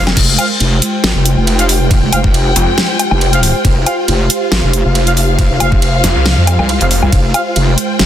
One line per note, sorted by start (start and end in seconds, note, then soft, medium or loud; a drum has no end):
0.00 0.15 F1 loud
0.00 0.13 G#3 medium
0.00 0.13 F4 medium
0.00 0.15 A#4 medium
0.07 snare medium
0.07 low woodblock medium
0.17 0.37 F1 loud
0.17 8.06 G#3 medium
0.17 8.06 F4 medium
0.17 7.11 G4 medium
0.17 kick loud
0.17 crash loud
0.17 ride medium
0.38 0.46 F4 medium
0.38 0.46 C5 medium
0.38 8.06 C5 medium
0.38 0.46 F5 medium
0.38 closed hi-hat medium
0.38 low woodblock medium
0.60 0.80 F1 medium
0.60 ride soft
0.70 4.20 G5 medium
0.82 closed hi-hat medium
1.04 1.14 G#1 loud
1.04 snare loud
1.04 ride medium
1.15 1.35 F1 loud
1.25 closed hi-hat medium
1.37 2.01 F1 loud
1.47 ride soft
1.59 1.65 F4 medium
1.59 1.65 C5 medium
1.59 1.65 F5 medium
1.59 closed hi-hat soft
1.69 open hi-hat loud
1.91 kick loud
1.91 ride medium
2.02 2.11 F1 loud
2.12 2.54 F1 loud
2.12 2.20 F4 medium
2.12 2.20 C5 medium
2.12 2.20 F5 medium
2.12 closed hi-hat medium
2.12 low woodblock medium
2.24 kick loud
2.34 ride soft
2.56 2.66 F1 loud
2.56 closed hi-hat medium
2.78 snare loud
2.78 ride medium
2.99 closed hi-hat medium
2.99 low woodblock medium
3.11 3.53 F1 loud
3.11 low woodblock medium
3.21 ride soft
3.33 3.39 F4 medium
3.33 3.39 C5 medium
3.33 3.39 F5 loud
3.33 closed hi-hat soft
3.43 open hi-hat medium
3.65 3.85 F1 loud
3.65 kick loud
3.65 ride medium
3.86 3.94 F4 medium
3.86 3.94 C5 medium
3.86 3.94 F5 medium
3.86 closed hi-hat medium
3.86 low woodblock medium
4.08 4.28 F1 medium
4.08 ride soft
4.18 7.68 F5 medium
4.30 closed hi-hat medium
4.52 4.61 G#1 medium
4.52 snare loud
4.52 ride medium
4.63 4.83 F1 loud
4.73 closed hi-hat medium
4.85 5.48 F1 loud
4.95 ride soft
5.07 5.13 F4 medium
5.07 5.13 C5 medium
5.07 5.13 F5 loud
5.07 closed hi-hat soft
5.17 open hi-hat medium
5.39 kick loud
5.39 ride medium
5.50 5.59 F1 loud
5.60 6.02 F1 loud
5.60 5.68 F4 medium
5.60 5.68 C5 medium
5.60 5.68 F5 medium
5.60 closed hi-hat medium
5.60 low woodblock medium
5.72 kick loud
5.82 ride soft
6.04 6.14 F1 loud
6.04 snare medium
6.04 closed hi-hat medium
6.16 6.35 C2 loud
6.26 snare loud
6.26 ride medium
6.37 6.57 F2 loud
6.47 closed hi-hat medium
6.47 low woodblock medium
6.59 6.79 C2 loud
6.59 low woodblock medium
6.69 ride soft
6.81 7.01 F1 loud
6.81 6.87 F4 medium
6.81 6.87 C5 medium
6.81 6.87 F5 medium
6.81 closed hi-hat soft
6.91 open hi-hat medium
7.03 7.11 C2 loud
7.03 low woodblock medium
7.12 7.33 F1 loud
7.12 8.06 A#4 medium
7.12 kick loud
7.12 ride medium
7.34 7.42 F4 medium
7.34 7.42 C5 medium
7.34 7.42 F5 medium
7.34 closed hi-hat medium
7.34 low woodblock medium
7.56 7.76 F1 loud
7.56 ride soft
7.66 8.06 G5 medium
7.78 closed hi-hat medium
7.99 8.06 G#1 loud
7.99 snare loud
7.99 ride medium